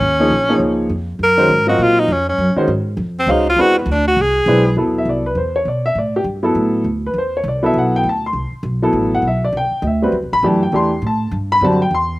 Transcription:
0.00 0.30 D#2 medium
0.00 0.62 C#4 loud
0.19 0.30 F3 medium
0.19 0.30 A#3 medium
0.19 0.30 D#4 medium
0.19 0.30 G#4 medium
0.19 0.31 C#5 medium
0.30 0.59 A#1 medium
0.49 0.88 F3 medium
0.49 0.88 A#3 medium
0.49 0.88 D#4 medium
0.49 0.88 G#4 medium
0.49 0.89 C#5 medium
0.60 0.89 C#2 medium
0.89 1.18 F2 medium
1.19 1.48 F#2 medium
1.23 1.66 A#4 loud
1.37 1.48 D#3 medium
1.37 1.48 G#3 medium
1.37 1.48 C#4 medium
1.37 1.49 F#4 medium
1.37 1.49 C5 medium
1.49 1.78 G#2 loud
1.67 2.06 F#3 medium
1.67 2.07 C4 medium
1.67 2.07 F4 medium
1.67 1.84 F#4 medium
1.67 2.07 A#4 medium
1.67 2.07 D#5 medium
1.78 2.07 A#2 medium
1.82 2.01 F4 medium
1.99 2.14 D#4 loud
2.08 2.37 F2 medium
2.12 2.28 C#4 medium
2.29 2.56 C#4 medium
2.38 2.55 F#2 medium
2.56 2.67 D#3 medium
2.56 2.67 G#3 medium
2.56 2.67 C#4 medium
2.56 2.68 F#4 medium
2.56 2.68 C5 medium
2.56 muted upright bass stroke soft
2.68 2.96 G#2 medium
2.97 3.26 F2 medium
3.19 3.32 C4 medium
3.27 3.56 C#2 loud
3.27 3.44 G#3 medium
3.27 3.44 C#4 medium
3.27 3.44 F#4 medium
3.27 3.45 C5 medium
3.27 3.45 F5 medium
3.31 3.47 D#4 medium
3.49 3.62 F4 loud
3.56 3.85 E2 medium
3.56 3.74 G#3 medium
3.56 3.74 C4 medium
3.56 3.74 D4 medium
3.56 3.74 E4 medium
3.56 3.74 B4 medium
3.61 3.77 F#4 loud
3.78 3.93 B3 medium
3.86 4.15 D2 loud
3.91 4.07 D4 medium
4.07 4.23 F#4 loud
4.17 4.45 C2 medium
4.21 4.73 G#4 loud
4.46 4.75 B1 medium
4.46 4.63 G#3 medium
4.46 4.63 C4 medium
4.46 4.63 D4 medium
4.46 4.64 E4 medium
4.46 4.64 B4 medium
4.76 5.05 E2 medium
4.76 5.21 F#3 medium
4.76 5.21 B3 medium
4.76 5.21 E4 medium
4.76 5.22 A4 medium
4.98 5.08 E5 medium
5.05 5.35 C2 medium
5.05 5.25 D5 medium
5.26 5.37 B4 medium
5.35 5.65 E2 medium
5.35 5.54 C5 medium
5.56 5.66 C#5 medium
5.65 5.95 B2 medium
5.65 5.85 D5 medium
5.86 5.96 E5 medium
5.95 6.24 A2 medium
5.95 6.15 D5 medium
6.16 6.23 G4 medium
6.24 6.54 G2 medium
6.43 6.82 F#3 medium
6.43 6.83 B3 medium
6.43 6.83 E4 medium
6.43 6.83 A4 medium
6.55 6.84 A2 medium
6.84 7.13 D2 medium
7.06 7.16 B4 medium
7.14 7.43 E2 medium
7.18 7.34 C5 medium
7.37 7.46 C#5 medium
7.44 7.73 C2 medium
7.48 7.64 D5 medium
7.63 8.02 F#3 medium
7.63 8.02 B3 medium
7.63 8.02 E4 medium
7.63 8.03 A4 medium
7.63 7.76 E5 medium
7.74 8.03 B1 medium
7.78 7.94 F#5 medium
7.96 8.06 G5 loud
8.03 8.32 D2 medium
8.09 8.25 A5 medium
8.26 8.52 C6 medium
8.33 8.51 C2 medium
8.51 muted upright bass stroke soft
8.63 8.92 B1 medium
8.82 9.22 F#3 medium
8.82 9.22 B3 medium
8.82 9.22 E4 medium
8.82 9.22 A4 medium
8.93 9.21 A1 medium
9.15 9.25 F#5 medium
9.22 9.52 B1 medium
9.27 9.43 E5 medium
9.45 9.55 D5 medium
9.52 9.70 C2 medium
9.57 9.83 G5 medium
9.71 muted upright bass stroke soft
9.82 10.11 D2 medium
9.82 9.84 D#5 soft
9.87 10.13 E5 medium
10.02 10.12 G3 medium
10.02 10.13 C4 medium
10.02 10.13 F#4 medium
10.02 10.13 B4 medium
10.12 10.24 E2 medium
10.22 10.32 C2 medium
10.32 10.42 A1 medium
10.32 10.44 B5 loud
10.43 10.71 F#2 medium
10.43 10.59 E3 medium
10.43 10.60 A3 medium
10.43 10.60 D4 medium
10.43 10.60 G4 medium
10.43 10.62 A5 medium
10.63 10.73 G5 medium
10.72 11.01 E2 medium
10.72 10.89 E3 medium
10.72 10.89 A3 medium
10.72 10.89 D4 medium
10.72 10.90 G4 medium
10.72 11.02 C6 medium
11.02 11.31 A2 medium
11.07 11.32 A5 medium
11.31 11.60 G2 medium
11.52 11.62 B5 loud
11.61 11.90 F#2 medium
11.61 11.78 D3 medium
11.61 11.79 G3 medium
11.61 11.79 C4 medium
11.61 11.79 F#4 medium
11.61 11.81 A5 medium
11.82 11.92 G5 loud
11.91 12.19 E2 medium
11.91 12.19 C6 loud

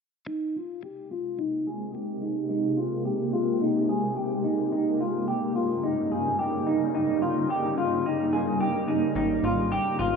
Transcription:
0.26 4.68 C3 medium
0.26 4.68 G#3 medium
0.26 10.16 A#3 medium
0.26 0.55 D#4 medium
0.26 4.68 G4 medium
0.56 0.83 F4 medium
0.83 1.11 G4 medium
1.11 1.39 F4 medium
1.38 1.66 D#4 medium
1.67 1.93 G#4 medium
1.94 2.21 G4 medium
2.21 2.48 D#4 medium
2.49 2.77 D#4 medium
2.77 3.05 F4 medium
3.05 3.33 G4 medium
3.33 3.61 F4 medium
3.61 3.89 D#4 medium
3.89 4.16 G#4 medium
4.16 4.44 G4 medium
4.44 4.71 D#4 medium
4.72 9.12 G2 medium
4.72 9.12 C#3 medium
4.72 9.12 G3 medium
4.72 9.12 D#4 medium
4.72 5.00 D#4 medium
5.00 5.27 F4 medium
5.28 5.55 G4 medium
5.55 5.83 F4 medium
5.84 6.11 D#4 medium
6.12 6.39 G#4 medium
6.39 6.66 G4 medium
6.67 6.93 D#4 medium
6.95 7.22 D#4 medium
7.22 7.50 F4 medium
7.50 7.77 G4 medium
7.78 8.05 F4 medium
8.06 8.33 D#4 medium
8.33 8.60 G#4 medium
8.60 8.88 G4 medium
8.88 9.15 D#4 medium
9.15 9.40 G#1 medium
9.15 10.16 C3 medium
9.15 10.16 G#3 medium
9.15 9.44 D#4 medium
9.15 10.16 G4 medium
9.43 9.80 G#1 medium
9.43 9.71 F4 medium
9.72 9.99 G4 medium
9.99 10.16 G#1 medium
9.99 10.16 F4 medium

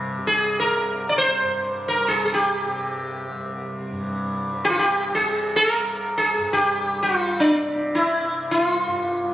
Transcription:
0.00 0.79 C2 medium
0.00 1.41 G2 medium
0.00 0.18 C3 medium
0.18 2.03 C3 medium
0.27 0.59 G#4 medium
0.60 1.09 A#4 medium
0.79 3.29 C2 medium
1.09 1.17 D5 medium
1.18 1.88 C5 medium
1.42 3.90 G2 medium
1.88 2.08 A#4 medium
2.03 2.66 C3 medium
2.08 2.25 G#4 medium
2.26 2.33 G#4 medium
2.34 3.94 G4 medium
2.66 4.53 C3 medium
3.29 5.77 C2 medium
3.91 6.37 G2 soft
4.53 5.14 C3 medium
4.65 4.69 G4 medium
4.69 4.77 F4 medium
4.79 5.14 G4 medium
5.14 7.00 C3 medium
5.14 5.56 G#4 medium
5.56 6.13 A#4 loud
5.77 8.22 C2 soft
6.18 6.53 G#4 medium
6.38 8.86 G2 medium
6.53 7.02 G4 medium
7.00 7.62 C3 soft
7.00 7.38 F4 medium
7.40 7.97 D4 medium
7.62 9.34 C3 medium
7.95 8.51 E4 medium
8.22 9.34 C2 medium
8.51 8.63 E4 medium
8.63 9.34 F4 medium
8.87 9.34 G2 medium

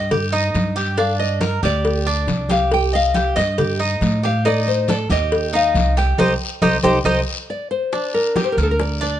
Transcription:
0.00 0.50 G2 medium
0.00 0.10 D#5 medium
0.00 0.29 G5 loud
0.11 0.32 G4 medium
0.11 cowbell loud
0.11 high conga soft
0.11 low conga medium
0.11 long guiro medium
0.32 0.75 D#4 medium
0.32 high conga soft
0.54 1.57 G2 medium
0.54 cowbell medium
0.54 high conga medium
0.54 short guiro medium
0.76 0.97 G4 medium
0.76 high conga soft
0.76 short guiro medium
0.97 1.40 D4 medium
0.97 1.18 F5 medium
0.97 cowbell loud
0.97 high conga soft
0.97 long guiro medium
1.19 1.64 D#5 loud
1.19 high conga soft
1.41 1.62 A#4 medium
1.41 cowbell medium
1.41 high conga medium
1.41 short guiro medium
1.63 2.24 D2 medium
1.63 2.05 G4 medium
1.63 2.51 D5 loud
1.63 high conga soft
1.63 short guiro medium
1.85 cowbell loud
1.85 high conga soft
1.85 long guiro medium
2.06 2.49 D4 medium
2.06 high conga soft
2.27 3.30 C2 medium
2.27 cowbell medium
2.27 high conga medium
2.27 short guiro medium
2.49 2.92 G4 medium
2.49 2.73 F5 loud
2.49 cowbell medium
2.49 high conga medium
2.49 short guiro medium
2.71 2.93 G5 loud
2.71 cowbell loud
2.71 high conga soft
2.71 long guiro medium
2.93 3.14 D#5 medium
2.93 3.35 F5 loud
2.93 high conga soft
3.14 3.36 G4 medium
3.14 cowbell medium
3.14 high conga medium
3.14 short guiro medium
3.36 3.98 G2 medium
3.36 3.57 D#5 medium
3.36 4.21 D#5 loud
3.36 cowbell medium
3.36 high conga soft
3.36 short guiro medium
3.58 3.79 G4 medium
3.58 cowbell loud
3.58 high conga soft
3.58 low conga medium
3.58 long guiro medium
3.80 4.22 D#4 medium
3.80 high conga soft
4.01 5.04 A2 loud
4.01 cowbell medium
4.01 high conga medium
4.01 short guiro medium
4.23 4.45 G4 medium
4.23 4.46 F5 loud
4.23 high conga soft
4.23 short guiro medium
4.45 4.87 D#4 medium
4.45 4.68 D5 medium
4.45 cowbell loud
4.45 high conga soft
4.45 long guiro medium
4.67 4.90 C5 medium
4.67 high conga soft
4.88 5.10 A4 medium
4.88 4.96 D5 medium
4.88 cowbell medium
4.88 high conga medium
4.88 short guiro medium
5.10 5.71 D#2 loud
5.10 5.52 G4 medium
5.10 5.52 D#5 loud
5.10 high conga soft
5.10 short guiro medium
5.32 cowbell loud
5.32 high conga soft
5.32 long guiro medium
5.53 5.96 D#4 medium
5.53 5.98 F5 loud
5.53 high conga soft
5.74 6.15 C2 medium
5.74 cowbell medium
5.74 high conga medium
5.74 short guiro medium
5.97 6.18 G4 medium
5.97 7.67 G5 medium
5.97 cowbell medium
5.97 short guiro medium
6.18 6.35 C2 loud
6.18 6.33 D#4 medium
6.18 6.33 G4 loud
6.18 6.33 C5 medium
6.18 cowbell loud
6.18 high conga loud
6.18 long guiro loud
6.62 6.79 C2 medium
6.62 6.76 D#4 loud
6.62 6.76 G4 medium
6.62 6.76 C5 medium
6.62 cowbell loud
6.62 high conga loud
6.62 long guiro loud
6.83 7.00 C2 medium
6.83 6.98 D#4 medium
6.83 6.98 G4 loud
6.83 6.98 C5 loud
6.83 cowbell loud
6.83 high conga loud
6.83 long guiro loud
7.05 7.21 C2 loud
7.05 7.19 D#4 loud
7.05 7.19 G4 medium
7.05 7.19 C5 medium
7.05 cowbell loud
7.05 high conga loud
7.05 long guiro medium
7.50 7.70 D5 medium
7.71 8.11 C5 medium
7.93 8.35 D4 medium
7.93 high bongo medium
7.93 high conga soft
7.93 long guiro medium
8.14 8.44 A#4 medium
8.14 high conga soft
8.36 8.57 G4 medium
8.36 high bongo medium
8.36 high conga loud
8.36 short guiro medium
8.44 8.52 C5 medium
8.52 8.61 A#4 medium
8.57 9.19 D2 medium
8.57 9.00 A#4 medium
8.57 high conga soft
8.57 short guiro medium
8.63 8.71 A4 medium
8.71 8.80 A#4 medium
8.80 9.00 D5 medium
8.80 high bongo medium
8.80 high conga soft
8.80 long guiro medium
9.01 9.20 D4 medium
9.01 9.20 D5 medium
9.01 high conga soft

